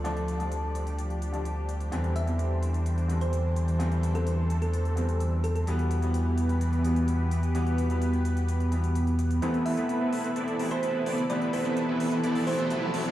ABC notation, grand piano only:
X:1
M:4/4
L:1/16
Q:1/4=128
K:Am
V:1 name="Grand piano" clef=bass
[D,F,A,D]3 [D,F,A,D]6- [D,F,A,D] z [D,F,A,D]4- [D,F,A,D] | [D,E,G,C]3 [D,E,G,C]6- [D,E,G,C] [D,E,G,C]6 | [D,E,G,C]3 [D,E,G,C]6- [D,E,G,C] [D,E,G,C]6 | [B,,E,G,B,]3 [B,,E,G,B,]6- [B,,E,G,B,] [B,,E,G,B,]6 |
[B,,E,G,B,]3 [B,,E,G,B,]6- [B,,E,G,B,] [B,,E,G,B,]6 | [C,E,A,B,]3 [C,E,A,B,]6- [C,E,A,B,] [B,,C,E,A,]6 | [C,E,A,B,]3 [C,E,A,B,]6- [C,E,A,B,] [B,,C,E,A,]6 |]